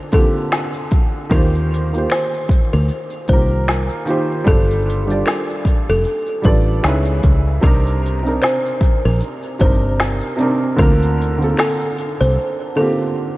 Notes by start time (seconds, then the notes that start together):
Already playing: D3 A#3 C4 F4 A4
0.12 D3 A#3 C4 A4, kick, closed hi-hat, shaker
0.16 F4 G4
0.52 finger snap, snare, shaker
0.73 shaker
0.91 kick, closed hi-hat, shaker
1.30 D#2 D#3 A#3 F4 A#4, kick, shaker
1.34 G4 C5
1.55 shaker
1.74 closed hi-hat, shaker
1.92 D#3 A#3 F4, shaker
1.96 G4 C5
2.10 C5, finger snap
2.12 finger snap, snare, shaker
2.34 shaker
2.49 kick, closed hi-hat, shaker
2.73 D2 A#4
2.88 shaker
3.10 shaker
3.28 C2 D#3 A#3 F4 C5, kick, closed hi-hat, shaker
3.32 G4 A#4
3.68 finger snap, snare, shaker
3.89 shaker
4.05 D#3 A#3 F4 G4, closed hi-hat, shaker
4.10 C5
4.44 G1 G3 D4 F4 A4, kick
4.48 A4 C5, shaker
4.71 shaker
4.90 closed hi-hat, shaker
5.06 G3 D4 F4
5.10 G4 D5, shaker
5.26 A#4, finger snap
5.28 finger snap, snare, shaker
5.50 shaker
5.65 kick, closed hi-hat, shaker
5.89 F1 A4
6.04 shaker
6.26 shaker
6.42 A1 G3 D4 F4 B4, kick, closed hi-hat, shaker
6.46 A4 D5
6.83 C#2 C#3 C#4 D#4, finger snap, snare, shaker
6.87 E4 B4
7.05 shaker
7.23 C#2, kick, closed hi-hat, shaker
7.61 C2 C3 C4 D4 A#4, kick, shaker
7.65 D#4 A#4
7.87 shaker
8.06 closed hi-hat, shaker
8.23 C3 C4 D4, shaker
8.27 D#4 A#4
8.42 C5, finger snap
8.43 finger snap, snare, shaker
8.66 shaker
8.81 kick, closed hi-hat, shaker
9.05 A#1 A#4
9.20 shaker
9.42 shaker
9.59 G1 C3 C4 D4 C5, kick, closed hi-hat, shaker
9.63 D#4 A#4
10.00 finger snap, snare, shaker
10.21 shaker
10.37 C3 C4 D4, closed hi-hat, shaker
10.41 D#4 A#4
10.76 D2 D3 A#3 C4 A#4, kick, shaker
10.81 F4 A#4
11.02 shaker
11.22 closed hi-hat, shaker
11.38 D3 A#3 C4, shaker
11.42 F4 A4
11.57 A4, finger snap
11.59 finger snap, snare, shaker
11.81 shaker
11.99 closed hi-hat, shaker
12.21 C2 C5, shaker
12.76 D3 A#3 C4 A4
12.80 F4 G4